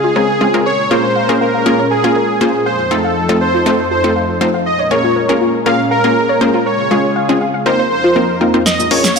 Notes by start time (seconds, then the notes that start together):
Already playing: C#3 G#3 F4 G#4
0.04 F4
0.16 G#3 C4 C#4 F4 G#4 A#4
0.41 G#3 C4 C#4 F4 G#4
0.54 G#3 C4 C#4 F4 A#4
0.66 A#2 G#3 C#4 A#4 C#5
0.91 A#3 C#4 F4 G#4 A#4 C5
1.16 F5
1.29 A#3 C#4 F4 G#4 A#4
1.41 A#4 F5
1.54 F5
1.66 A#3 C#4 F4 G#4 A#4
1.79 C#5
1.91 G#4
2.04 A#3 C#4 F4 G#4 A#4
2.16 A#4
2.41 A#3 C#4 F4 G#4 C5
2.66 F2 F3 D#4 A4 C5 F5
2.91 A3 C4 D#4 F4 A4 F5
3.04 F5
3.29 A3 C4 D#4 F4 A4 C5
3.41 C5
3.54 F4
3.66 A3 C4 D#4 F4 A4
3.91 F4 C5
4.04 A3 C4 D#4 F4 A4
4.16 F5
4.41 A3 C4 D#4 F4 C5 F5
4.54 F5
4.66 A#2 G#3 C#4 A#4 D#5
4.79 C#5
4.91 A#3 C#4 F4 G#4 A#4 C#5
5.04 F4
5.16 A#4
5.29 A#3 C#4 F4 G#4 A#4
5.41 F4
5.66 A#3 C#4 F4 G#4 A#4 F5
5.91 A#4 F5
6.04 A#3 C#4 F4 G#4 A#4 F5
6.29 C#5
6.41 A#3 C#4 F4 G#4 C5
6.54 F4
6.66 C#3 F4 G#4 A#4 C#5
6.91 G#3 C#4 F4 G#4
7.16 F5
7.29 G#3 C4 C#4 F4 G#4
7.41 F5
7.54 F5
7.66 F2 F3 A#3 C4 D#4 F4 A#4 C5
7.79 C5
7.91 C5
8.04 F4
8.16 A#3 C4 D#4 F4 A#4
8.41 A#3 C4 D#4 F4 A#4
8.54 A#3 C4 D#4 F4 C5
8.66 G#3 A#3 C#4 A#4 D#5, snare, closed hi-hat, shaker
8.79 A#1, shaker
8.91 A#1 A#3 C#4 F4 G#4 A#4 C#5, open hi-hat
9.04 snare, closed hi-hat, shaker
9.16 F5, closed hi-hat